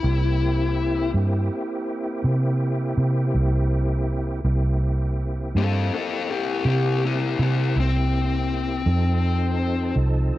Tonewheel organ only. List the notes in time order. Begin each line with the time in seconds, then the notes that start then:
0.02 A#3 C4 E4 G4
4.45 A#3 C4 E4 G4
8.86 F3 C4 D#4 A4